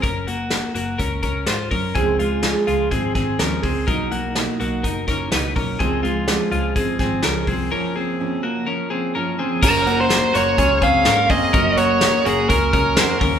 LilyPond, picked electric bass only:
\new Staff \with { instrumentName = "Picked electric bass" } { \clef bass \time 4/4 \key ges \lydian \tempo 4 = 125 ges,,4~ ges,,16 r16 ges,,8 des,8 des,8 aes,8 ges,8 | des,4~ des,16 r16 des,8 aes,,8 aes,,8 ees,8 des,8 | ces,4~ ces,16 r16 ces,8 ges,,8 ges,,8 des,8 ces,8 | des,4~ des,16 r16 des,8 aes,,8 aes,,8 des,8 c,8 |
r1 | ges,,4~ ges,,16 r16 ges,,8 des,8 des,8 aes,8 ges,8 | ges,,4~ ges,,16 r16 ges,,8 des,8 des,8 f,8 ees,8 | }